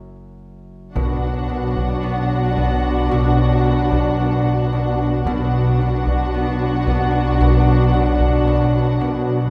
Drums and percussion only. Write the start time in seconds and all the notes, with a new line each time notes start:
0.95 taiko
1.76 taiko
2.57 taiko
3.11 taiko
3.92 taiko
5.26 taiko
6.06 taiko
6.87 taiko
7.40 taiko
8.20 taiko